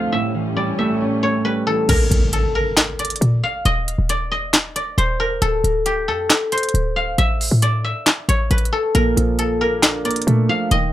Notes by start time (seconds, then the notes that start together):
Already playing: D2 C3 D3 F3 A3 C4 D4 F4 G4 A4 C5 F5
0.12 A2 G3 C#4 E5
0.34 E3
0.56 G3 D5
0.79 A3 E5
1.01 C#4
1.23 A3 C#5
1.45 G3 B4
1.67 E3 A4
1.89 A#1 A#4, closed hi-hat, crash, impact
2.11 A#1, closed hi-hat
2.33 A4, closed hi-hat
2.55 A#4
2.77 snare, clap, closed hi-hat
2.99 D5, closed hi-hat
3.05 closed hi-hat
3.10 closed hi-hat
3.16 closed hi-hat
3.21 A#2, closed hi-hat
3.43 F5
3.65 D#1 D#5, closed hi-hat
3.88 closed hi-hat
3.98 D#1
4.09 D5, closed hi-hat
4.32 D#5
4.53 snare, clap, closed hi-hat
4.76 D5, closed hi-hat
4.98 D#1 C5, closed hi-hat
5.20 A#4
5.42 D1 A4, closed hi-hat
5.64 D1, closed hi-hat
5.86 G4, closed hi-hat
6.08 F2 A4
6.30 snare, clap, closed hi-hat
6.52 C5, closed hi-hat
6.58 closed hi-hat
6.63 closed hi-hat
6.69 closed hi-hat
6.74 D1, closed hi-hat
6.96 F5
7.18 A1 E5, closed hi-hat
7.41 open hi-hat
7.51 A2
7.62 D5, closed hi-hat
7.84 E5
8.06 snare, clap, closed hi-hat
8.29 A1 C#5, closed hi-hat
8.51 A1 B4, closed hi-hat
8.58 closed hi-hat
8.65 closed hi-hat
8.73 A4
8.94 A#1 A#2 A#4, closed hi-hat
9.17 A#1 F3, closed hi-hat
9.39 A4, closed hi-hat
9.61 A#3 A#4
9.83 D4, snare, clap, closed hi-hat
10.05 A#3 D5, closed hi-hat
10.11 closed hi-hat
10.16 closed hi-hat
10.22 closed hi-hat
10.27 A#2 A3, closed hi-hat
10.49 F3 F5
10.71 D#1 D#3 D#5, closed hi-hat